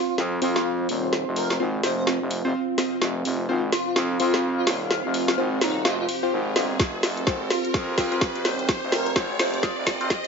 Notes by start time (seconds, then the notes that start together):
Already playing: C4 F4 C5 F5, riser
0.09 F4
0.18 F2, snare
0.42 F2 C4 F4 C5, open hi-hat
0.56 C4 F4 F5, snare
0.89 D#1, open hi-hat
1.13 snare
1.27 F1
1.36 A#4, open hi-hat
1.50 snare
1.60 G#1 C4 F4 C5
1.83 F1 C5, snare, open hi-hat
1.98 C5
2.07 C4 F4 D#5, snare
2.21 F1
2.31 open hi-hat
2.45 F1 C4 F4 C5
2.78 C4 F4 D#5, snare, open hi-hat
3.02 F1 F5, snare
3.25 F1, open hi-hat
3.49 G#1 C4 F4 C5
3.72 F4, snare, open hi-hat
3.87 F4
3.96 F2, snare
4.20 F2 C4 F4 C5, open hi-hat
4.34 C4 F4 F5, snare
4.58 F4
4.67 D#1 F4, snare, open hi-hat
4.91 snare
5.05 F1
5.14 open hi-hat
5.28 snare
5.38 G#1 C4 F4 C5
5.61 D#1 D#4, snare, open hi-hat
5.85 F1 C4 F4 D#5, snare
5.99 F4
6.09 open hi-hat
6.23 C4 F4 C5
6.32 G#1
6.56 G1 C4 F4 D#5, snare, open hi-hat
6.80 G4 C5, kick, snare, closed hi-hat
7.03 F1, snare, open hi-hat
7.17 closed hi-hat
7.27 G#1 C4 F4 C5, kick, snare, closed hi-hat
7.50 F4, snare, open hi-hat
7.65 F4, closed hi-hat
7.74 F2, kick, snare, closed hi-hat
7.98 F2 C4 F4 C5, kick, snare, open hi-hat
8.12 C4 F4 F5, closed hi-hat
8.21 kick, snare
8.35 closed hi-hat
8.45 D#1, snare, open hi-hat
8.59 closed hi-hat
8.69 kick, snare, closed hi-hat
8.83 F1
8.92 A#4, snare, open hi-hat
9.06 closed hi-hat
9.16 G#1 C4 F4 C5, kick, snare, closed hi-hat
9.39 F1 C5, snare, open hi-hat
9.54 C5, closed hi-hat
9.63 C4 F4 D#5, kick, snare, closed hi-hat
9.77 F1
9.87 kick, snare, open hi-hat
10.01 F1 C4 F4 C5, closed hi-hat
10.10 kick, snare